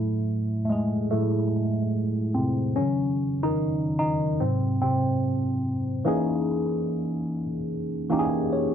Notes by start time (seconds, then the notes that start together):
Already playing: A2 F#3 A3 E4
0.65 A3
0.70 G#3 G#4
1.11 A2 F#3 A3 E4
2.34 C3 C4
2.76 C#3 D#3 F#3 C#4
3.43 D#3 D#4
3.99 D#3 D#4
4.40 G#2 C3 F#3 C4
4.81 C3 C4
6.05 E3 A#3 C#4 D#4 G#4
8.10 E3 A#3 C#4 D#4 G4
8.20 G#4
8.53 G#4 C#5